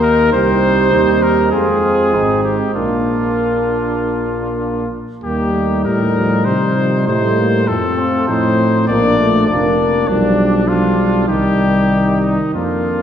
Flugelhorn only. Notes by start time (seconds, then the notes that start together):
Already playing: D#4
0.32 D#4
1.53 F4
2.15 D#4
2.76 D4
5.23 D#4
7.69 C4
7.99 F4
8.29 D#4
8.90 D4
9.49 D4
10.10 D4
10.67 D4
11.29 D#4
12.54 D4